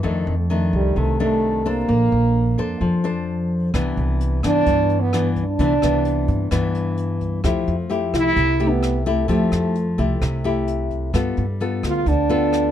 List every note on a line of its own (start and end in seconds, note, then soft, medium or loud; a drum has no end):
0.03 0.94 F2 medium
0.03 0.26 F2 medium
0.03 0.33 D#3 medium
0.03 0.34 A3 medium
0.03 0.34 D4 medium
0.27 0.70 F2 medium
0.50 1.16 D#3 medium
0.50 1.16 A3 medium
0.50 1.16 D4 medium
0.73 0.95 C2 medium
0.73 0.99 G3 medium
0.96 1.85 C2 medium
0.96 1.87 C3 medium
0.96 1.20 A3 medium
1.20 1.62 D#3 medium
1.20 1.62 A3 medium
1.20 1.70 A3 loud
1.20 1.62 D4 medium
1.66 3.06 A#3 loud
1.66 2.55 D4 medium
1.66 2.55 A4 medium
1.66 2.55 C5 medium
1.89 2.10 A#1 loud
1.89 2.79 A#3 medium
2.12 2.55 A#1 medium
2.58 2.80 F2 medium
2.58 3.01 D4 medium
2.58 3.01 A4 medium
2.58 3.01 C5 medium
2.81 3.70 F2 medium
2.81 3.72 F3 medium
3.04 3.70 D4 medium
3.04 3.70 A4 medium
3.04 3.71 C5 medium
3.74 3.96 C2 medium
3.74 4.64 C3 medium
3.74 4.40 E3 medium
3.74 4.40 B3 medium
3.74 4.40 D4 medium
3.74 kick medium
3.74 cross-stick medium
3.74 closed hi-hat soft
3.97 4.40 C2 medium
3.97 closed hi-hat soft
4.21 closed hi-hat soft
4.43 4.65 G2 medium
4.43 5.09 E3 medium
4.43 5.09 B3 medium
4.43 5.10 D4 medium
4.43 5.02 D4 loud
4.43 kick soft
4.43 cross-stick medium
4.43 closed hi-hat soft
4.66 5.55 G2 medium
4.66 5.57 G2 medium
4.66 kick medium
4.66 closed hi-hat soft
4.90 closed hi-hat soft
5.00 5.30 B3 loud
5.13 5.43 E3 medium
5.13 5.43 B3 soft
5.13 5.43 D4 medium
5.13 cross-stick medium
5.13 closed hi-hat soft
5.36 6.72 D4 loud
5.36 kick soft
5.36 closed hi-hat soft
5.59 5.81 C2 loud
5.59 6.50 C3 medium
5.59 5.73 E3 medium
5.59 5.73 B3 medium
5.59 5.73 D4 medium
5.59 kick medium
5.59 closed hi-hat soft
5.82 6.26 C2 loud
5.82 6.49 E3 medium
5.82 6.49 B3 medium
5.82 6.49 D4 medium
5.82 cross-stick medium
5.82 closed hi-hat soft
6.05 closed hi-hat soft
6.28 6.50 G2 medium
6.28 kick soft
6.28 closed hi-hat soft
6.51 7.42 G2 medium
6.51 7.40 G2 medium
6.51 7.40 E3 medium
6.51 7.41 B3 medium
6.51 7.41 D4 medium
6.51 kick medium
6.51 cross-stick medium
6.51 closed hi-hat soft
6.75 closed hi-hat soft
6.97 closed hi-hat soft
7.21 kick soft
7.21 closed hi-hat soft
7.44 7.66 F2 loud
7.44 8.34 F3 medium
7.44 7.74 A3 medium
7.44 7.74 E4 medium
7.44 7.74 G4 medium
7.44 kick medium
7.44 cross-stick medium
7.44 closed hi-hat soft
7.67 8.11 F2 medium
7.67 closed hi-hat soft
7.90 8.56 A3 medium
7.90 8.56 E4 medium
7.90 8.56 G4 medium
7.90 closed hi-hat soft
8.13 8.35 C2 medium
8.13 8.70 E4 loud
8.13 kick soft
8.13 cross-stick medium
8.13 closed hi-hat soft
8.36 9.25 C2 medium
8.36 9.27 C3 medium
8.36 kick medium
8.36 closed hi-hat soft
8.60 9.02 A3 medium
8.60 9.03 E4 medium
8.60 9.03 G4 medium
8.60 closed hi-hat soft
8.69 8.99 B3 medium
8.83 cross-stick medium
8.83 closed hi-hat soft
9.06 9.26 A3 medium
9.06 10.41 A3 medium
9.06 9.26 E4 medium
9.06 9.26 G4 medium
9.06 kick soft
9.06 closed hi-hat soft
9.28 9.51 F2 medium
9.28 10.19 F3 medium
9.28 9.75 A3 medium
9.28 9.75 E4 medium
9.28 9.75 G4 medium
9.28 kick medium
9.28 closed hi-hat soft
9.52 9.95 F2 medium
9.52 cross-stick medium
9.52 closed hi-hat soft
9.75 closed hi-hat soft
9.98 10.20 C2 medium
9.98 10.41 A3 medium
9.98 10.41 E4 medium
9.98 10.41 G4 medium
9.98 kick soft
9.98 closed hi-hat soft
10.21 11.10 C2 medium
10.21 11.12 C3 medium
10.21 kick medium
10.21 cross-stick medium
10.21 closed hi-hat soft
10.44 11.10 A3 medium
10.44 11.10 E4 medium
10.44 11.11 G4 medium
10.44 closed hi-hat soft
10.67 closed hi-hat soft
10.91 kick soft
10.91 closed hi-hat soft
11.13 11.36 G2 medium
11.13 12.04 G3 soft
11.13 11.44 B3 medium
11.13 11.44 F4 soft
11.13 11.44 A4 medium
11.13 kick medium
11.13 cross-stick medium
11.13 closed hi-hat soft
11.37 11.80 G2 medium
11.37 closed hi-hat soft
11.60 12.06 B3 soft
11.60 12.07 F4 soft
11.60 12.07 A4 medium
11.60 closed hi-hat soft
11.83 12.05 D2 medium
11.83 12.09 F4 loud
11.83 kick soft
11.83 cross-stick medium
11.83 closed hi-hat soft
12.06 12.71 D2 medium
12.06 12.71 D3 medium
12.06 12.71 D4 loud
12.06 kick medium
12.06 closed hi-hat soft
12.29 12.71 B3 medium
12.29 12.71 F4 medium
12.29 12.71 A4 medium
12.29 closed hi-hat soft
12.53 cross-stick medium
12.53 closed hi-hat soft